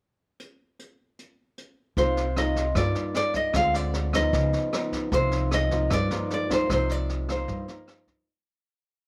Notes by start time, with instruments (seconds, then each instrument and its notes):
0.40 closed hi-hat
0.79 closed hi-hat
1.19 closed hi-hat
1.58 closed hi-hat
1.97 upright bass C2, nylon-string guitar C3 A#3 D#4 F4 C5, kick, snare
2.17 snare
2.36 nylon-string guitar A#3 D#4 F4 D#5, cross-stick, snare
2.56 kick, snare
2.75 upright bass G2, nylon-string guitar G2 A#3 D#4 F4 D5, kick, cross-stick, snare
2.95 snare
3.14 nylon-string guitar D5, snare
3.34 nylon-string guitar D#5, kick, snare
3.53 upright bass D2, nylon-string guitar D3 G#3 C4 F4 F5, kick, cross-stick, snare
3.74 nylon-string guitar D5, snare
3.93 snare
4.13 nylon-string guitar F3 B3 D#4 D#5, kick, cross-stick, snare
4.33 upright bass C#2, nylon-string guitar C#3, kick, snare
4.53 snare
4.73 nylon-string guitar F3 B3 D#4, cross-stick, snare
4.92 kick, snare
5.12 upright bass C2, nylon-string guitar C3 F3 A#3 D#4 C5, kick, snare
5.31 snare
5.51 nylon-string guitar D#5, cross-stick, snare
5.71 nylon-string guitar F3 A#3 D#4, kick, snare
5.90 nylon-string guitar G2 D5, upright bass G2, kick, cross-stick, snare
6.11 nylon-string guitar F3 A#3 D#4, snare
6.30 nylon-string guitar D5, snare
6.50 nylon-string guitar F3 A#3 D#4 C5, kick, snare
6.70 upright bass C2, nylon-string guitar C3 F3 A#3 D#4 C5, kick, cross-stick, snare
6.89 nylon-string guitar D5, snare
7.09 snare
7.29 nylon-string guitar F3 A#3 D#4 C5, kick, cross-stick, snare
7.48 upright bass G2, nylon-string guitar G2, kick, snare
7.68 nylon-string guitar F3 A#3 D#4, snare
7.88 cross-stick, snare
8.07 kick, snare